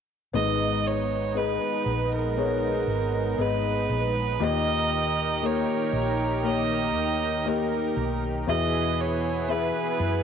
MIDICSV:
0, 0, Header, 1, 5, 480
1, 0, Start_track
1, 0, Key_signature, 5, "minor"
1, 0, Tempo, 1016949
1, 160, Time_signature, 4, 2, 24, 8
1, 4829, End_track
2, 0, Start_track
2, 0, Title_t, "Violin"
2, 0, Program_c, 0, 40
2, 167, Note_on_c, 0, 75, 83
2, 409, Note_on_c, 0, 73, 74
2, 416, Note_off_c, 0, 75, 0
2, 648, Note_on_c, 0, 71, 72
2, 655, Note_off_c, 0, 73, 0
2, 1004, Note_off_c, 0, 71, 0
2, 1008, Note_on_c, 0, 70, 71
2, 1610, Note_on_c, 0, 71, 73
2, 1617, Note_off_c, 0, 70, 0
2, 2091, Note_on_c, 0, 75, 94
2, 2098, Note_off_c, 0, 71, 0
2, 2571, Note_on_c, 0, 73, 77
2, 2578, Note_off_c, 0, 75, 0
2, 3045, Note_off_c, 0, 73, 0
2, 3053, Note_on_c, 0, 75, 73
2, 3530, Note_on_c, 0, 70, 69
2, 3537, Note_off_c, 0, 75, 0
2, 3885, Note_off_c, 0, 70, 0
2, 4008, Note_on_c, 0, 75, 86
2, 4251, Note_on_c, 0, 73, 75
2, 4258, Note_off_c, 0, 75, 0
2, 4487, Note_on_c, 0, 71, 69
2, 4494, Note_off_c, 0, 73, 0
2, 4829, Note_off_c, 0, 71, 0
2, 4829, End_track
3, 0, Start_track
3, 0, Title_t, "Felt piano"
3, 0, Program_c, 1, 0
3, 158, Note_on_c, 1, 59, 64
3, 162, Note_on_c, 1, 51, 43
3, 162, Note_on_c, 1, 68, 54
3, 163, Note_on_c, 1, 44, 42
3, 166, Note_on_c, 1, 75, 65
3, 244, Control_c, 1, 64, 127
3, 615, Note_off_c, 1, 59, 0
3, 617, Note_off_c, 1, 68, 0
3, 619, Note_off_c, 1, 75, 0
3, 636, Note_on_c, 1, 59, 48
3, 638, Note_on_c, 1, 68, 47
3, 644, Note_on_c, 1, 75, 58
3, 862, Note_off_c, 1, 44, 0
3, 862, Note_off_c, 1, 51, 0
3, 1094, Note_off_c, 1, 59, 0
3, 1095, Note_off_c, 1, 68, 0
3, 1098, Note_off_c, 1, 75, 0
3, 1114, Note_on_c, 1, 59, 50
3, 1118, Note_on_c, 1, 68, 49
3, 1124, Note_on_c, 1, 73, 62
3, 1573, Note_off_c, 1, 59, 0
3, 1575, Note_off_c, 1, 68, 0
3, 1578, Note_off_c, 1, 73, 0
3, 1594, Note_on_c, 1, 59, 52
3, 1598, Note_on_c, 1, 68, 52
3, 1603, Note_on_c, 1, 75, 55
3, 2053, Note_off_c, 1, 59, 0
3, 2055, Note_off_c, 1, 68, 0
3, 2057, Note_off_c, 1, 75, 0
3, 2074, Note_on_c, 1, 58, 62
3, 2078, Note_on_c, 1, 46, 46
3, 2079, Note_on_c, 1, 67, 63
3, 2083, Note_on_c, 1, 75, 70
3, 2086, Control_c, 1, 64, 0
3, 2157, Control_c, 1, 64, 127
3, 2533, Note_off_c, 1, 58, 0
3, 2535, Note_off_c, 1, 67, 0
3, 2537, Note_off_c, 1, 75, 0
3, 2556, Note_on_c, 1, 58, 51
3, 2560, Note_on_c, 1, 67, 48
3, 2565, Note_on_c, 1, 70, 58
3, 2780, Note_off_c, 1, 46, 0
3, 3014, Note_off_c, 1, 58, 0
3, 3016, Note_off_c, 1, 67, 0
3, 3018, Note_off_c, 1, 70, 0
3, 3037, Note_on_c, 1, 58, 61
3, 3041, Note_on_c, 1, 67, 51
3, 3046, Note_on_c, 1, 73, 68
3, 3494, Note_off_c, 1, 58, 0
3, 3496, Note_off_c, 1, 67, 0
3, 3499, Note_off_c, 1, 73, 0
3, 3516, Note_on_c, 1, 58, 57
3, 3521, Note_on_c, 1, 67, 47
3, 3525, Note_on_c, 1, 75, 62
3, 3974, Note_off_c, 1, 58, 0
3, 3976, Note_off_c, 1, 67, 0
3, 3978, Note_off_c, 1, 75, 0
3, 3998, Note_on_c, 1, 59, 64
3, 4002, Note_on_c, 1, 47, 46
3, 4002, Note_on_c, 1, 68, 61
3, 4006, Note_on_c, 1, 64, 75
3, 4007, Control_c, 1, 64, 0
3, 4096, Control_c, 1, 64, 127
3, 4455, Note_off_c, 1, 59, 0
3, 4457, Note_off_c, 1, 68, 0
3, 4459, Note_off_c, 1, 64, 0
3, 4474, Note_on_c, 1, 59, 54
3, 4480, Note_on_c, 1, 68, 53
3, 4484, Note_on_c, 1, 76, 62
3, 4702, Note_off_c, 1, 47, 0
3, 4829, Note_off_c, 1, 59, 0
3, 4829, Note_off_c, 1, 68, 0
3, 4829, Note_off_c, 1, 76, 0
3, 4829, End_track
4, 0, Start_track
4, 0, Title_t, "Analog synth pad"
4, 0, Program_c, 2, 89
4, 161, Note_on_c, 2, 59, 61
4, 162, Note_on_c, 2, 63, 73
4, 163, Note_on_c, 2, 56, 64
4, 2061, Note_off_c, 2, 59, 0
4, 2062, Note_off_c, 2, 56, 0
4, 2062, Note_off_c, 2, 63, 0
4, 2077, Note_on_c, 2, 67, 64
4, 2078, Note_on_c, 2, 51, 71
4, 2078, Note_on_c, 2, 63, 67
4, 2078, Note_on_c, 2, 70, 78
4, 3980, Note_off_c, 2, 51, 0
4, 3980, Note_off_c, 2, 63, 0
4, 3980, Note_off_c, 2, 67, 0
4, 3980, Note_off_c, 2, 70, 0
4, 4000, Note_on_c, 2, 64, 67
4, 4000, Note_on_c, 2, 68, 58
4, 4001, Note_on_c, 2, 52, 71
4, 4002, Note_on_c, 2, 59, 73
4, 4829, Note_off_c, 2, 52, 0
4, 4829, Note_off_c, 2, 59, 0
4, 4829, Note_off_c, 2, 64, 0
4, 4829, Note_off_c, 2, 68, 0
4, 4829, End_track
5, 0, Start_track
5, 0, Title_t, "Fingered electric bass"
5, 0, Program_c, 3, 33
5, 161, Note_on_c, 3, 32, 73
5, 741, Note_off_c, 3, 32, 0
5, 877, Note_on_c, 3, 34, 64
5, 1339, Note_off_c, 3, 34, 0
5, 1356, Note_on_c, 3, 32, 62
5, 1581, Note_off_c, 3, 32, 0
5, 1597, Note_on_c, 3, 32, 59
5, 1821, Note_off_c, 3, 32, 0
5, 1838, Note_on_c, 3, 34, 69
5, 2062, Note_off_c, 3, 34, 0
5, 2077, Note_on_c, 3, 39, 74
5, 2659, Note_off_c, 3, 39, 0
5, 2800, Note_on_c, 3, 34, 67
5, 3279, Note_off_c, 3, 34, 0
5, 3279, Note_on_c, 3, 39, 73
5, 3740, Note_off_c, 3, 39, 0
5, 3760, Note_on_c, 3, 35, 67
5, 3983, Note_off_c, 3, 35, 0
5, 4000, Note_on_c, 3, 40, 82
5, 4581, Note_off_c, 3, 40, 0
5, 4719, Note_on_c, 3, 42, 65
5, 4829, Note_off_c, 3, 42, 0
5, 4829, End_track
0, 0, End_of_file